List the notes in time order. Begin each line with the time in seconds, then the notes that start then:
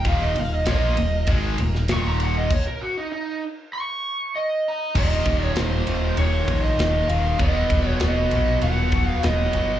Already playing: D#4 A#4 F5
0.05 D#1 D#2 A#2 D#3 F5, kick, ride
0.23 D#5
0.36 D#1 D#2 A#2 F5, ride
0.54 D#5
0.66 A#1 A#2 F3 A#3, snare, ride
0.70 D#5
0.97 D#1 D#2 A#2, ride
1.27 G#1 G#2 D#3 G#3, kick, ride
1.58 D#1 D#2 A#2, ride
1.75 snare
1.88 D#1 D#2 A#2 D#3, snare, ride
1.92 C#6
2.08 A#5
2.20 F#5, ride
2.37 D#5
2.50 C#5, kick, crash
2.67 A#4
2.81 F#4
2.97 D#4
3.13 D#4
3.73 C#6
4.36 D#5
4.68 A#5
4.95 D#1 D#2 A#2 D#3 D#4 A#4 D#5 F5, kick, crash
5.25 D#1 D#2 A#2 D#3, kick, ride
5.44 C#5
5.56 D#1 D#2 A#2 D#3 C5, snare, ride
5.86 D#1 D#2 A#2 D#3, ride
6.17 D#1 D#2 A#2 D#3 C#5, ride
6.47 A#1 D#2 A#2 D#3, kick, ride
6.63 D#5
6.78 D#1 D#2 A#2 D#3, snare, ride
7.08 D#1 D#2 A#2 D#3 F5, ride
7.39 D#1 B2 F#3 B3 F#4 C#5 D#5, kick, ride
7.70 D#1 B2 F#3 B3, kick, ride
8.00 D#1 B2 F#3 B3 D#5, snare, ride
8.31 A#1 B2 F#3 B3, ride
8.61 D#1 B2 F#3 B3 F#5, ride
8.92 B2 F#3 B3, kick, ride
9.08 F5
9.23 D#1 B2 F#3 B3 D#5, snare, ride
9.53 G1 B2 F#3 B3, ride